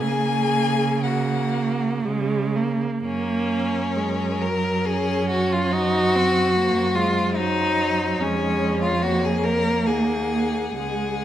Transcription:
0.01 cello C#3, viola A#3, violin G#4 G#5
1.03 viola A#3, violin F#4 F#5
2.05 cello C#3, viola G#3
2.56 viola A#3
3.03 cello F#2, viola A#3, violin C#4 A#4
3.96 viola G#3
4.41 viola F#3, violin A#4
4.85 viola C#4, violin G#4
5.29 violin F#4
5.52 violin F4
5.71 viola D#4, violin F#4 C5
6.15 viola C4
6.57 viola A#3
6.95 viola G#3, violin F4
7.36 viola F#3, violin D#4
8.20 cello F2, viola G#3, violin C#4 C#5
8.82 violin F4
9.02 viola A#3, violin F#4
9.24 violin G#4
9.44 violin A#4
9.87 cello D#2, violin G#4 F#5
10.76 cello C#2, viola G#3, violin G#4

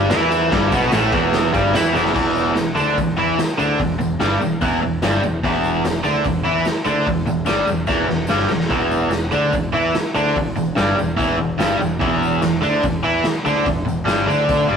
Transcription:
Already playing: overdriven electric guitar G3
0.09 fingered electric bass E2, overdriven electric guitar E3 E4, snare, ride, tambourine
0.31 ride, tambourine
0.50 fingered electric bass G1, overdriven electric guitar G2 G3, kick, snare, ride, tambourine
0.71 fingered electric bass B1, overdriven electric guitar B2 B3, kick, ride, tambourine
0.92 fingered electric bass A1, overdriven electric guitar A2 A3, snare, ride, tambourine
1.12 fingered electric bass E1, overdriven electric guitar E2 E3, kick, ride, tambourine
1.33 snare, ride, tambourine
1.53 fingered electric bass G1, overdriven electric guitar G2 G3, kick, ride, tambourine
1.73 fingered electric bass E2, overdriven electric guitar E3 E4, snare, ride, tambourine
1.93 fingered electric bass E1, overdriven electric guitar E2 E3, snare, tambourine
2.05 snare
2.14 fingered electric bass E1, overdriven electric guitar E2 E3, kick, crash
2.36 tambourine
2.55 fingered electric bass E1, overdriven electric guitar E2, snare, open hi-hat, tambourine
2.75 fingered electric bass D2, overdriven electric guitar D3 D4, tambourine
2.97 fingered electric bass E1, overdriven electric guitar E2, kick, open hi-hat, tambourine
3.17 fingered electric bass E2, overdriven electric guitar E3 E4
3.38 muted overdriven electric guitar stroke, muted fingered electric bass stroke, snare, open hi-hat, tambourine
3.58 fingered electric bass D2, overdriven electric guitar D3 D4, tambourine
3.78 fingered electric bass E1, overdriven electric guitar E2, kick, open hi-hat
3.99 fingered electric bass E1, overdriven electric guitar E2, tambourine
4.20 fingered electric bass G1, overdriven electric guitar G2 G3, snare, open hi-hat, tambourine
4.41 fingered electric bass E1, overdriven electric guitar E2, tambourine
4.61 fingered electric bass E1, overdriven electric guitar E2 E3, kick, open hi-hat, tambourine
4.82 fingered electric bass E1, overdriven electric guitar E2
5.02 fingered electric bass G1, overdriven electric guitar G2 G3, snare, open hi-hat, tambourine
5.23 fingered electric bass E1, overdriven electric guitar E2, tambourine
5.43 fingered electric bass E1, overdriven electric guitar E2 E3, kick, open hi-hat
5.64 tambourine
5.84 fingered electric bass E1, overdriven electric guitar E2, snare, open hi-hat, tambourine
6.04 fingered electric bass D2, overdriven electric guitar D3 D4, tambourine
6.24 fingered electric bass E1, overdriven electric guitar E2, kick, open hi-hat, tambourine
6.44 fingered electric bass E2, overdriven electric guitar E3 E4
6.64 muted overdriven electric guitar stroke, muted fingered electric bass stroke, snare, open hi-hat, tambourine
6.85 fingered electric bass D2, overdriven electric guitar D3 D4, tambourine
7.06 fingered electric bass E1, overdriven electric guitar E2, kick, open hi-hat
7.26 fingered electric bass E1, overdriven electric guitar E2, tambourine
7.46 fingered electric bass G1, overdriven electric guitar G2 G3, snare, open hi-hat, tambourine
7.66 fingered electric bass E1, overdriven electric guitar E2, tambourine
7.87 fingered electric bass E1, overdriven electric guitar E2 E3, kick, snare, tambourine
8.08 fingered electric bass E1, overdriven electric guitar E2, snare, tambourine
8.27 fingered electric bass G1, overdriven electric guitar G2 G3, snare, tambourine
8.39 snare
8.49 fingered electric bass E1, overdriven electric guitar E2, snare, tambourine
8.60 snare
8.69 fingered electric bass E1, overdriven electric guitar E2 E3, kick, open hi-hat
8.91 tambourine
9.10 fingered electric bass E1, overdriven electric guitar E2, snare, open hi-hat, tambourine
9.32 fingered electric bass D2, overdriven electric guitar D3 D4, tambourine
9.53 fingered electric bass E1, overdriven electric guitar E2, kick, open hi-hat, tambourine
9.73 fingered electric bass E2, overdriven electric guitar E3 E4
9.94 muted overdriven electric guitar stroke, muted fingered electric bass stroke, snare, open hi-hat, tambourine
10.15 fingered electric bass D2, overdriven electric guitar D3 D4, tambourine
10.36 fingered electric bass E1, overdriven electric guitar E2, kick, open hi-hat
10.56 fingered electric bass E1, overdriven electric guitar E2, tambourine
10.75 fingered electric bass G1, overdriven electric guitar G2 G3, snare, open hi-hat, tambourine
10.97 fingered electric bass E1, overdriven electric guitar E2, tambourine
11.17 fingered electric bass E1, overdriven electric guitar E2 E3, kick, open hi-hat, tambourine
11.38 fingered electric bass E1, overdriven electric guitar E2
11.58 fingered electric bass G1, overdriven electric guitar G2 G3, snare, open hi-hat, tambourine
11.79 fingered electric bass E1, overdriven electric guitar E2, tambourine
12.00 fingered electric bass E1, overdriven electric guitar E2 E3, kick, open hi-hat
12.23 tambourine
12.42 fingered electric bass E1, overdriven electric guitar E2, snare, open hi-hat, tambourine
12.61 fingered electric bass D2, overdriven electric guitar D3 D4, tambourine
12.83 fingered electric bass E1, overdriven electric guitar E2, kick, open hi-hat, tambourine
13.03 fingered electric bass E2, overdriven electric guitar E3 E4
13.24 muted overdriven electric guitar stroke, muted fingered electric bass stroke, snare, open hi-hat, tambourine
13.45 fingered electric bass D2, overdriven electric guitar D3 D4, tambourine
13.65 fingered electric bass E1, overdriven electric guitar E2, kick, open hi-hat, tambourine
13.86 fingered electric bass E1, overdriven electric guitar E2, tambourine
14.06 fingered electric bass G1, overdriven electric guitar G2 G3, snare, open hi-hat, tambourine
14.26 fingered electric bass D2, overdriven electric guitar D3 D4
14.30 tambourine
14.49 kick, open hi-hat, tambourine
14.67 fingered electric bass G1, overdriven electric guitar G2 G3

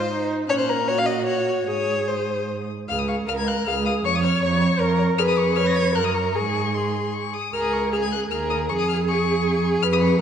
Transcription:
Already playing: viola F4, violin C5
0.12 viola D#4
0.49 cello A#2, viola C#4, violin C#5 F#6
0.59 violin C5
0.69 violin A#4
0.88 viola F#4, violin C#5 F#6
0.98 violin F5
1.06 violin D#5
1.27 violin C#5 F#6
1.47 violin F6
1.67 cello G#2, viola G#4, violin C#5 D#6
2.07 violin C5 D#6
2.88 cello C#2, viola G#4, violin F5 F6
2.99 violin D#6
3.08 violin F5 C#6
3.27 cello C#2, viola A#4, violin F5 F6
3.38 violin G#6
3.46 violin F5 F#6
3.67 cello C#2, viola G#4, violin F5 F6
3.86 violin F5 D#6
4.04 cello F2, viola C#5, violin C#5 C#6
4.15 violin D#6
4.23 violin C#5 F6
4.42 cello F2, violin C#5 C#6
4.61 violin C#5
4.79 cello F2, viola A#4, violin C#5
4.98 violin C#5
5.17 cello F2, viola G#4, violin B4 F6
5.29 violin D#6
5.38 violin C#6
5.56 violin B4 F6, viola C#5
5.66 violin A#6
5.76 violin G#6
5.95 cello F#2, violin A#4 F#6, viola A#4
6.05 violin D#6
6.14 violin C#6
6.34 cello G#2, viola G#4, violin G#4 C#6
6.74 violin G#4 C6
7.14 violin C#6
7.34 violin D#6
7.53 cello C#2, violin G#4 F6, viola A#4
7.63 violin D#6
7.73 violin C#6
7.92 violin G#4 F6, viola G#4
8.03 violin G#6
8.12 violin F#6
8.31 cello D#2, violin G#4 F6, viola A#4
8.50 violin D#6
8.69 cello F2, violin G#4 C#6, viola G#4
8.79 violin D#6
8.89 violin F6
9.07 violin G#4 C#6
9.82 cello F2, violin B4 F6
9.93 violin D#6
10.01 violin C#6

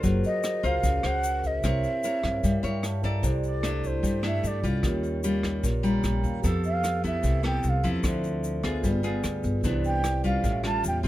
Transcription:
Already playing: nylon-string guitar F4 A#4 C5
0.01 upright bass F#1, nylon-string guitar F#3, vibraphone F#4 G#4 A#4, kick, closed hi-hat, shaker
0.07 vibraphone C5
0.24 bansuri D#5, closed hi-hat, shaker
0.44 cross-stick, closed hi-hat, shaker
0.63 upright bass C#2, nylon-string guitar F4 A#4 C5, bansuri F5, kick, closed hi-hat, shaker
0.83 upright bass C#2, nylon-string guitar C#3, kick, closed hi-hat, shaker
1.03 upright bass C#2, nylon-string guitar A#4 C5, bansuri F#5, cross-stick, closed hi-hat, shaker
1.23 closed hi-hat, shaker
1.44 bansuri D#5, kick, closed hi-hat, shaker
1.60 upright bass C2, nylon-string guitar C4 E4, vibraphone E4 G4, bansuri E5, kick, cross-stick, closed hi-hat, shaker
1.65 vibraphone A#4 C#5, nylon-string guitar A#4 C#5
1.84 closed hi-hat, shaker
2.03 nylon-string guitar E4 A#4 C#5, closed hi-hat, shaker
2.24 upright bass G2, kick, cross-stick, closed hi-hat, shaker
2.43 upright bass G2, nylon-string guitar G3, vibraphone E5, kick, closed hi-hat, shaker
2.63 upright bass G2, nylon-string guitar E4 A#4 C#5, vibraphone G5, closed hi-hat, shaker
2.83 vibraphone A5, cross-stick, closed hi-hat, shaker
3.03 nylon-string guitar E4 A4 D5, vibraphone A#5, kick, closed hi-hat, shaker
3.21 upright bass C2, nylon-string guitar C3, vibraphone E4 G4 A4, kick, closed hi-hat, shaker
3.26 vibraphone D5
3.43 bansuri D5, closed hi-hat, shaker
3.63 nylon-string guitar A3 D4 E4, cross-stick, closed hi-hat, shaker
3.83 bansuri C5, kick, closed hi-hat, shaker
4.03 upright bass G2, nylon-string guitar G3, kick, closed hi-hat, shaker
4.23 nylon-string guitar A3 D4 E4, bansuri E5, cross-stick, closed hi-hat, shaker
4.43 upright bass G2, closed hi-hat, shaker
4.47 bansuri D5
4.63 upright bass C2, nylon-string guitar G3 C#4 F4, kick, closed hi-hat, shaker
4.80 upright bass D#2, nylon-string guitar D#3, vibraphone F4 G4, kick, cross-stick, closed hi-hat, shaker
4.84 vibraphone A#4 C#5
5.03 closed hi-hat, shaker
5.23 nylon-string guitar G3 C#4 F4, closed hi-hat, shaker
5.43 kick, cross-stick, shaker
5.63 upright bass A#1, nylon-string guitar A#2, kick, closed hi-hat, shaker
5.83 nylon-string guitar G3 C#4 F4, vibraphone A#5, closed hi-hat, shaker
6.04 upright bass A#1, vibraphone G5, cross-stick, closed hi-hat, shaker
6.23 upright bass D#2, vibraphone F5, kick, closed hi-hat, shaker
6.41 upright bass F2, nylon-string guitar F3 B3 A4, vibraphone G4 A4 B4, kick, closed hi-hat, shaker
6.46 vibraphone E6
6.64 bansuri F5, closed hi-hat, shaker
6.84 cross-stick, closed hi-hat, shaker
7.04 nylon-string guitar B3 E4 A4, bansuri E5, kick, closed hi-hat, shaker
7.23 upright bass C2, nylon-string guitar C3, kick, closed hi-hat, shaker
7.43 nylon-string guitar B3 E4 A4, bansuri G5, cross-stick, closed hi-hat, shaker
7.63 upright bass C2, closed hi-hat, shaker
7.69 bansuri F5
7.84 upright bass E2, nylon-string guitar F3 C4 E4, kick, closed hi-hat, shaker
8.03 upright bass D2, nylon-string guitar D3, vibraphone A4 C5, kick, cross-stick, closed hi-hat, shaker
8.07 vibraphone E5
8.24 closed hi-hat, shaker
8.44 closed hi-hat, shaker
8.63 nylon-string guitar B3 F4 G#4, kick, cross-stick, closed hi-hat, shaker
8.80 upright bass G1, nylon-string guitar G3, vibraphone F4 G#4 B4, kick, closed hi-hat, shaker
8.86 vibraphone D5
9.03 nylon-string guitar B3 F4 G#4, closed hi-hat, shaker
9.24 upright bass D2, cross-stick, closed hi-hat, shaker
9.43 upright bass G1, kick, closed hi-hat, shaker
9.61 upright bass C2, nylon-string guitar C3 E3 B3 D4, vibraphone E4 G4, kick, closed hi-hat, shaker
9.65 vibraphone B4 D5
9.84 bansuri G5, closed hi-hat, shaker
10.04 cross-stick, closed hi-hat, shaker
10.24 nylon-string guitar G3 C#4 F4, bansuri F5, kick, closed hi-hat, shaker
10.41 upright bass A1, nylon-string guitar A2, vibraphone F4 G4 C#5, kick, closed hi-hat, shaker
10.47 vibraphone E5
10.63 nylon-string guitar G3 C#4 F4, bansuri A5, cross-stick, closed hi-hat, shaker
10.83 upright bass E2, closed hi-hat, shaker
10.88 bansuri G5
11.03 upright bass A1, nylon-string guitar G3 C4 F4, kick, closed hi-hat, shaker

